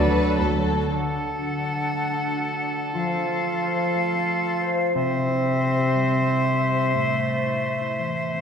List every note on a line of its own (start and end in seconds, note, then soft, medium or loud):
0.00 0.33 D2 soft
0.00 0.85 D3 soft
0.00 0.72 F#3 soft
0.00 2.64 F#3 soft
0.00 1.92 A3 soft
0.00 0.72 D4 medium
0.00 0.71 F#4 soft
0.00 1.24 F#4 soft
0.00 0.75 A4 soft
0.00 0.41 B4 medium
0.00 0.69 D5 medium
0.07 0.57 F#3 soft
0.07 0.57 A4 soft
0.41 0.84 D2 soft
0.41 0.92 A4 soft
0.58 0.91 F#3 soft
0.58 0.92 A4 soft
0.91 2.95 D3 soft
0.91 2.89 D4 soft
0.91 4.91 A4 soft
0.91 2.90 F#5 soft
1.08 2.09 D4 soft
1.25 2.26 F#4 soft
1.42 1.75 A4 soft
1.59 2.59 D5 soft
1.76 2.43 A4 soft
1.93 3.94 A3 soft
2.10 2.95 D4 soft
2.27 2.95 F#4 soft
2.44 2.76 A4 soft
2.60 2.95 D5 soft
2.77 3.44 A4 soft
2.93 4.96 F3 soft
2.93 4.90 F4 soft
2.93 4.90 F5 soft
3.11 4.11 C4 soft
3.29 4.27 F4 soft
3.45 3.78 A4 soft
3.62 4.60 C5 soft
3.79 4.44 A4 soft
3.95 4.96 A3 soft
4.12 5.09 C4 soft
4.29 4.96 F4 soft
4.61 5.60 C5 soft
4.78 4.96 A4 soft
4.95 6.97 C3 medium
4.95 6.92 C4 medium
4.95 8.41 C5 medium
4.95 8.41 E5 soft
5.10 6.10 C4 soft
5.27 6.26 E4 soft
5.44 5.77 G4 soft
5.61 6.60 C5 soft
5.78 6.43 G4 soft
5.95 6.97 G3 soft
6.11 7.28 C4 soft
6.27 7.45 E4 soft
6.44 6.77 G4 soft
6.61 8.41 C5 soft
6.78 6.97 G4 soft
6.95 8.41 A2 soft
6.95 8.41 A3 soft
7.12 8.13 A3 soft
7.29 8.31 C4 soft
7.46 7.79 E4 soft
7.64 8.41 A4 soft
7.81 8.41 E4 soft
7.98 8.41 E3 soft
8.15 8.41 A3 soft
8.32 8.41 C4 soft